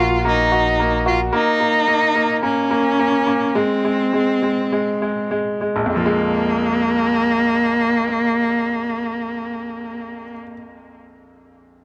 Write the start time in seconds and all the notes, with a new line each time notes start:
Already playing: A#1 A#3 C#4 F4 A#4
0.00 F#4
0.25 A#3 D#4
0.52 F#4
0.80 A#3
1.06 F4 F#4
1.33 A#3 D#4
1.61 A#3
1.88 A#3
2.15 A#3
2.43 A#3 C#4
2.71 A#3
2.99 A#3
3.27 A#3
3.55 G#3 C4
3.85 G#3
4.13 G#3
4.42 G#3
4.72 G#3
5.02 G#3
5.31 G#3
5.61 G#3
5.76 A#1
5.86 F2
5.93 F3 A#3
6.06 G#3